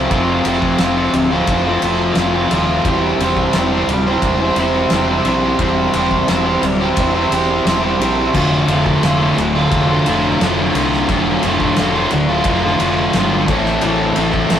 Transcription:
Already playing: overdriven electric guitar F3 A3 C4 F4
0.10 fingered electric bass F1, overdriven electric guitar F2 C3 F3 A3 C4 F4, kick, ride
0.45 fingered electric bass F1, overdriven electric guitar F3 A3 C4 F4, ride
0.62 kick
0.78 fingered electric bass F1, overdriven electric guitar F2 C3 F3 A3 C4 F4, snare, ride
0.97 overdriven electric guitar F3 A3 C4 F4
1.14 fingered electric bass D1, muted overdriven electric guitar stroke, ride
1.30 overdriven electric guitar F3 A3 C4 F4
1.47 fingered electric bass F1, kick, ride
1.65 overdriven electric guitar F3 A3 C4 F4
1.82 fingered electric bass F1, overdriven electric guitar F3 A3 C4 F4, ride
2.15 fingered electric bass F1, overdriven electric guitar F2 C3 F3 A3 C4 F4, snare, ride
2.35 overdriven electric guitar F3 A3 C4 F4
2.51 fingered electric bass D#1, overdriven electric guitar F3 A3 C4 F4, ride
2.84 fingered electric bass E1, overdriven electric guitar C3 G3 C4 E4, kick, ride
2.88 overdriven electric guitar G4 C5
3.18 fingered electric bass E1, overdriven electric guitar C4 E4, ride
3.23 overdriven electric guitar G4 C5
3.37 kick
3.53 fingered electric bass E1, overdriven electric guitar C3 G3 C4 E4 G4, snare, ride
3.57 overdriven electric guitar C5
3.72 overdriven electric guitar C4 E4 G4 C5
3.87 fingered electric bass D1, muted overdriven electric guitar stroke, ride
4.07 overdriven electric guitar C4 E4 G4 C5
4.22 fingered electric bass E1, kick, ride
4.41 overdriven electric guitar C4 E4 G4 C5
4.56 fingered electric bass E1, overdriven electric guitar C4 E4, ride
4.60 overdriven electric guitar G4 C5
4.90 fingered electric bass E1, overdriven electric guitar C3 G3 C4 E4 G4, snare, ride
4.95 overdriven electric guitar C5
5.09 overdriven electric guitar C4 E4 G4 C5
5.25 fingered electric bass A#1, overdriven electric guitar C4 E4 G4 C5, ride
5.58 fingered electric bass E1, overdriven electric guitar C3 G3 C4 E4 G4 C5, kick, ride
5.94 fingered electric bass E1, overdriven electric guitar C4 E4 G4 C5, ride
6.11 kick
6.28 fingered electric bass E1, overdriven electric guitar C3 G3 C4 E4 G4 C5, snare, ride
6.45 overdriven electric guitar C4 E4 G4 C5
6.62 fingered electric bass D1, muted overdriven electric guitar stroke, ride
6.80 overdriven electric guitar C4 E4 G4 C5
6.97 fingered electric bass E1, kick, ride
7.14 overdriven electric guitar C4 E4 G4 C5
7.31 fingered electric bass E1, overdriven electric guitar C4 E4 G4 C5, ride
7.65 fingered electric bass E1, overdriven electric guitar C3 G3 C4 E4 G4 C5, snare, ride
7.82 overdriven electric guitar C4 E4 G4 C5
7.99 fingered electric bass A#1, overdriven electric guitar C4 E4 G4 C5, ride
8.34 fingered electric bass F1, overdriven electric guitar D2 A2 D3 A3 F4, kick, crash
8.68 fingered electric bass F1, overdriven electric guitar A2 D3 A3, ride
8.72 overdriven electric guitar F4
8.86 kick
9.02 fingered electric bass F1, overdriven electric guitar D2 A2 D3 A3 F4, snare, ride
9.20 overdriven electric guitar D3 A3 F4
9.38 fingered electric bass D1, muted overdriven electric guitar stroke, ride
9.55 overdriven electric guitar D3 A3 F4
9.71 fingered electric bass F1, kick, ride
9.90 overdriven electric guitar D3 A3 F4
10.06 fingered electric bass F1, distorted electric guitar D2, overdriven electric guitar A2 D3 A3 F4, ride
10.41 fingered electric bass F1, overdriven electric guitar D2 A2 D3 A3 F4, snare, ride
10.58 overdriven electric guitar D3 A3 F4
10.75 fingered electric bass C2, overdriven electric guitar A2 D3 A3 F4, ride
10.93 snare
11.09 fingered electric bass F1, overdriven electric guitar D2 A2 D3 A3 F4, kick, ride
11.43 fingered electric bass F1, overdriven electric guitar A2 D3 A3 F4, ride
11.60 kick
11.76 fingered electric bass F1, overdriven electric guitar D2 A2 D3 A3, snare, ride
11.81 overdriven electric guitar F4
11.95 overdriven electric guitar D3 A3 F4
12.11 fingered electric bass D1, muted overdriven electric guitar stroke, ride
12.29 overdriven electric guitar D3 A3 F4
12.44 fingered electric bass F1, kick, ride
12.63 overdriven electric guitar D3 A3 F4
12.79 fingered electric bass F1, overdriven electric guitar A2 D3 A3 F4, ride
12.84 distorted electric guitar D2
13.13 fingered electric bass G1, overdriven electric guitar D2 A2 D3 A3 F4, snare, ride
13.32 overdriven electric guitar D3 A3 F4
13.48 fingered electric bass A1, overdriven electric guitar A2 E3 A3 C4 E4 A4, kick, ride
13.65 snare
13.81 fingered electric bass A1, overdriven electric guitar A2 E3 A3 C4 E4 A4, ride
14.16 fingered electric bass A1, overdriven electric guitar A3 C4 E4, ride
14.20 overdriven electric guitar A4
14.34 kick
14.50 fingered electric bass A1, overdriven electric guitar A2 E3 A3 C4 E4, snare, ride
14.54 overdriven electric guitar A4

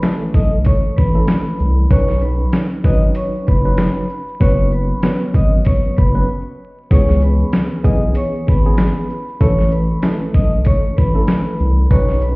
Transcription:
0.02 tine electric piano E3 A3 C#4 A4, snare, closed hi-hat, shaker
0.21 shaker
0.34 sub bass B1, vibraphone D#5 D#6, kick, closed hi-hat, shaker
0.52 shaker
0.64 vibraphone C#5 C#6, kick, closed hi-hat, shaker
0.84 shaker
0.97 sub bass A1, vibraphone B4 B5, kick, shaker
1.14 tine electric piano E3 A3 C#4 A4, shaker
1.28 snare, closed hi-hat, shaker
1.46 shaker
1.59 sub bass C2, shaker
1.78 shaker
1.90 sub bass B1, tine electric piano F#3 C#4 D#4 B4, vibraphone C#5 C#6, kick, closed hi-hat, shaker
2.09 snare, shaker
2.21 vibraphone B4 B5, shaker
2.39 shaker
2.53 snare, closed hi-hat, shaker
2.71 shaker
2.84 sub bass G#1, tine electric piano F#3 C#4 D#4 B4, vibraphone D#5 D#6, kick, closed hi-hat, shaker
3.01 shaker
3.14 vibraphone C#5 C#6, closed hi-hat, shaker
3.34 shaker
3.47 sub bass F#1, vibraphone B4 B5, kick, shaker
3.64 tine electric piano F#3 C#4 D#4 B4, shaker
3.78 snare, closed hi-hat, shaker
3.96 shaker
4.09 shaker
4.28 shaker
4.40 sub bass F#1, tine electric piano F#3 B3 C#4 B4, vibraphone C#5 C#6, kick, closed hi-hat, shaker
4.60 shaker
4.71 vibraphone B4 B5, shaker
4.89 shaker
5.03 tine electric piano F#3 B3 C#4 B4, snare, closed hi-hat, shaker
5.21 shaker
5.34 sub bass G#1, vibraphone D#5 D#6, kick, closed hi-hat, shaker
5.52 shaker
5.65 vibraphone C#5 C#6, kick, closed hi-hat, shaker
5.84 shaker
5.97 sub bass F#1, vibraphone B4 B5, kick, shaker
6.14 tine electric piano F#3 B3 C#4 B4, shaker
6.90 sub bass C#2, tine electric piano E3 B3 C#4 G#4, vibraphone C#5 C#6, kick, closed hi-hat, shaker
7.09 snare, shaker
7.21 vibraphone B4 B5, shaker
7.40 shaker
7.53 snare, closed hi-hat, shaker
7.71 shaker
7.83 sub bass B1, tine electric piano E3 B3 C#4 G#4, vibraphone D#5 D#6, kick, closed hi-hat, shaker
8.02 shaker
8.15 vibraphone C#5 C#6, closed hi-hat, shaker
8.35 shaker
8.47 sub bass G#1, vibraphone B4 B5, kick, shaker
8.64 tine electric piano E3 B3 C#4 G#4, shaker
8.78 snare, closed hi-hat, shaker
8.96 shaker
9.09 shaker
9.28 shaker
9.40 sub bass A1, tine electric piano E3 A3 C#4 A4, vibraphone C#5 C#6, kick, closed hi-hat, shaker
9.59 snare, shaker
9.71 vibraphone B4 B5, shaker
9.90 shaker
10.03 tine electric piano E3 A3 C#4 A4, snare, closed hi-hat, shaker
10.21 shaker
10.34 sub bass B1, vibraphone D#5 D#6, kick, closed hi-hat, shaker
10.52 shaker
10.65 vibraphone C#5 C#6, kick, closed hi-hat, shaker
10.84 shaker
10.97 sub bass A1, vibraphone B4 B5, kick, shaker
11.14 tine electric piano E3 A3 C#4 A4, shaker
11.28 snare, closed hi-hat, shaker
11.46 shaker
11.59 sub bass C2, shaker
11.78 shaker
11.90 sub bass B1, tine electric piano F#3 C#4 D#4 B4, vibraphone C#5 C#6, kick, closed hi-hat, shaker
12.09 snare, shaker
12.21 vibraphone B4 B5, shaker

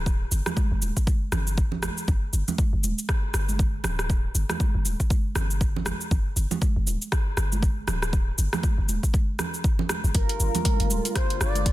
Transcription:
Already playing: 808-style bass D1
0.06 kick, cabasa
0.32 808-style bass G1, cabasa
0.46 cross-stick, high conga, low conga, cabasa
0.57 kick, high conga, cabasa
0.71 808-style bass G1
0.82 808-style bass D1, high conga, cabasa
0.97 kick, cabasa
1.07 kick, high conga, cabasa
1.32 808-style bass G1, cross-stick, low conga, cabasa
1.47 cabasa
1.57 kick, cabasa
1.72 low conga
1.83 cross-stick, high conga, low conga, cabasa
1.97 cabasa
2.08 808-style bass G1, kick, cabasa
2.33 808-style bass G1, cabasa
2.48 high conga, low conga, cabasa
2.58 kick, high conga, cabasa
2.73 808-style bass G1
2.84 808-style bass D1, high conga, cabasa
2.98 cabasa
3.09 kick, cross-stick, cabasa
3.34 808-style bass G1, cross-stick, cabasa
3.49 high conga, cabasa
3.59 kick, cabasa
3.84 808-style bass D1, cross-stick, low conga, cabasa
3.99 cross-stick, cabasa
4.10 kick, cabasa
4.35 808-style bass G1, cabasa
4.49 cross-stick, high conga, low conga, cabasa
4.60 kick, high conga, cabasa
4.75 808-style bass G1
4.85 808-style bass D1, high conga, cabasa
5.00 kick, cabasa
5.10 kick, high conga, cabasa
5.35 808-style bass G1, cross-stick, low conga, cabasa
5.50 cabasa
5.61 kick, cabasa
5.76 low conga
5.85 cross-stick, high conga, low conga, cabasa
6.01 cabasa
6.11 808-style bass G1, kick, cabasa
6.36 808-style bass G1, cabasa
6.51 high conga, low conga, cabasa
6.61 kick, high conga, cabasa
6.76 808-style bass G1
6.87 808-style bass D1, high conga, cabasa
7.02 cabasa
7.12 kick, cross-stick, cabasa
7.37 808-style bass G1, cross-stick, cabasa
7.52 high conga, cabasa
7.63 kick, cabasa
7.87 808-style bass D1, cross-stick, low conga, cabasa
8.02 cross-stick, cabasa
8.13 kick, cabasa
8.38 808-style bass G1, cabasa
8.53 cross-stick, high conga, low conga, cabasa
8.63 kick, high conga, cabasa
8.78 808-style bass G1
8.89 808-style bass D1, high conga, cabasa
9.03 kick, cabasa
9.13 kick, high conga, cabasa
9.39 cross-stick, low conga, cabasa
9.54 cabasa
9.64 kick, cabasa
9.79 low conga
9.89 cross-stick, high conga, low conga, cabasa
10.04 808-style bass G1, cabasa
10.15 808-style bass G1, analog synth pad D3 G3 A#3 F4, analog synth lead A#4, kick, closed hi-hat, cabasa
10.29 closed hi-hat
10.40 808-style bass G1, cabasa
10.55 closed hi-hat, high conga, low conga, cabasa
10.65 kick, closed hi-hat, high conga, cabasa
10.80 808-style bass G1, closed hi-hat
10.90 808-style bass D1, high conga, cabasa
11.05 closed hi-hat, cabasa
11.16 analog synth lead C5, kick, cross-stick, closed hi-hat, cabasa
11.30 closed hi-hat
11.41 808-style bass G1, analog synth lead D5, cross-stick, cabasa
11.55 closed hi-hat, high conga, cabasa
11.66 kick, closed hi-hat, cabasa

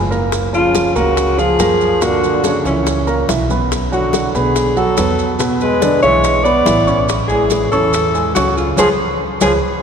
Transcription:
Already playing: upright bass F#1, trombone C#3, alto saxophone F4
0.10 grand piano A#3 A#4 A#5, maracas
0.32 high bongo, high conga, maracas
0.53 trombone C#3, grand piano F3 F4 F5, alto saxophone F4, high conga, maracas
0.75 high bongo, high conga, maracas
0.95 upright bass C#2, trombone C#3, grand piano A#3 A#4 A#5, alto saxophone F#4, high conga, low conga, maracas
1.17 high bongo, high conga, maracas
1.38 grand piano F3 F4 F5, trombone F3, alto saxophone G#4, high conga, maracas
1.59 upright bass F#2, grand piano A#3 A#4 A#5, high bongo, low bongo, high conga, maracas
1.81 high conga, maracas
2.01 grand piano A#2 A#3 A#4, trombone D3, alto saxophone F#4, high bongo, high conga, maracas
2.23 high bongo, high conga, maracas
2.44 grand piano C#3 C#4 C#5, high bongo, high conga, maracas
2.65 upright bass C#2, trombone A#2, grand piano E3 E4 E5, alto saxophone C#4, high bongo, high conga, maracas
2.87 high bongo, high conga, maracas
3.06 grand piano A#3 A#4 A#5, high bongo, high conga, maracas
3.28 upright bass B1, grand piano E3 E4 E5, high bongo, low bongo, high conga, maracas
3.50 grand piano B3 B4 B5, high conga, maracas
3.71 high bongo, high conga, maracas
3.92 trombone D3, grand piano F#3 F#4 F#5, alto saxophone F#4, high conga, maracas
4.13 high bongo, high conga, maracas
4.34 upright bass B2, trombone D3, grand piano B3 B4 B5, alto saxophone G#4, high conga, low conga, maracas
4.55 high bongo, high conga, maracas
4.77 grand piano F#3 F#4 F#5, trombone F#3, alto saxophone A4, high conga, maracas
4.97 upright bass E2, grand piano B3 B4 B5, high bongo, low bongo, high conga, maracas
5.19 high conga, maracas
5.39 grand piano B2 B3 B4, high bongo, high conga, maracas
5.61 trombone G#3, alto saxophone B4, high bongo, high conga, maracas
5.81 grand piano D3 D4 D5, high bongo, high conga, maracas
6.02 upright bass B1, grand piano E3 E4 E5, trombone G#3, alto saxophone C#5, high bongo, high conga, maracas
6.24 high bongo, high conga, maracas
6.44 grand piano B3 B4 B5, trombone B3, alto saxophone D5, high bongo, high conga, maracas
6.65 upright bass A1, grand piano E3 E4 E5, high bongo, low bongo, high conga, maracas
6.87 grand piano C#4 C#5 C#6, maracas
7.08 high bongo, high conga, maracas
7.28 trombone E3, grand piano G#3 G#4 G#5, alto saxophone G#4, high conga, maracas
7.50 high bongo, high conga, maracas
7.72 upright bass E2, trombone E3, grand piano C#4 C#5 C#6, alto saxophone A4, high conga, low conga, maracas
7.93 high bongo, high conga, maracas
8.14 grand piano G#3 G#4 G#5, high conga, maracas
8.35 upright bass C#2, trombone C#3, grand piano C#4 C#5 C#6, alto saxophone F#4, high bongo, low bongo, high conga, maracas
8.56 trombone C#3, alto saxophone F4, high conga, maracas
8.77 upright bass C#2, trombone F3, grand piano G#4 B4 C#5, alto saxophone G#4, low bongo, high conga, maracas
9.41 upright bass C#2, trombone F3, grand piano G#4 B4 C#5, alto saxophone G#4, low bongo, high conga, maracas

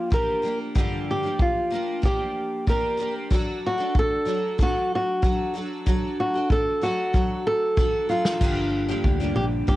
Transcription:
Already playing: steel-string acoustic guitar A#3 D4 G4
0.10 steel-string acoustic guitar F3 A#3 D4 G4, nylon-string guitar A#4, kick
0.42 steel-string acoustic guitar F3 A#3 D4 G4
0.75 steel-string acoustic guitar G2 D3 F3 A#3 D4 G4, kick
1.11 nylon-string guitar G4
1.23 steel-string acoustic guitar F3 A#3 D4 G4
1.39 nylon-string guitar F4, kick
1.70 steel-string acoustic guitar F3 A#3 D4 G4
2.02 steel-string acoustic guitar F3 A#3 D4 G4, nylon-string guitar G4, kick
2.67 steel-string acoustic guitar F3 A#3 D4 G4, nylon-string guitar A#4, kick
2.97 steel-string acoustic guitar F3 A#3 D4 G4
3.30 steel-string acoustic guitar F#3 D4 F#4 A4, kick
3.66 nylon-string guitar F#4
3.78 steel-string acoustic guitar D4 F#4 A4
3.95 nylon-string guitar A4, kick
4.25 steel-string acoustic guitar F#3 D4 F#4 A4
4.58 steel-string acoustic guitar F#3 D4 F#4 A4, kick
4.62 nylon-string guitar F#4
4.95 nylon-string guitar F#4
5.22 steel-string acoustic guitar F#3 D4 F#4 A4, kick
5.54 steel-string acoustic guitar F#3 D4 F#4 A4
5.86 steel-string acoustic guitar F#3 D4 F#4 A4, kick
6.20 nylon-string guitar F#4
6.34 steel-string acoustic guitar D4 F#4 A4
6.50 nylon-string guitar A4, kick
6.81 steel-string acoustic guitar F#3 D4 F#4 A4, nylon-string guitar F#4
7.13 steel-string acoustic guitar F#3 D4 F#4 A4, kick
7.47 nylon-string guitar A4
7.77 steel-string acoustic guitar F#3 D4 F#4 A4, kick
8.09 steel-string acoustic guitar F#3 D4 A4, nylon-string guitar F4
8.25 snare
8.41 fingered electric bass G1, steel-string acoustic guitar G2 D3 F3 A#3 D4 G4, kick, crash
8.89 steel-string acoustic guitar G2 D3 F3 A#3 D4 G4
9.04 fingered electric bass D2, kick
9.20 steel-string acoustic guitar G2 D3 F3 A#3 D4 G4
9.35 fingered electric bass A#1, nylon-string guitar G4
9.67 fingered electric bass G2, steel-string acoustic guitar F3 A#3 D4 G4, nylon-string guitar G4, kick

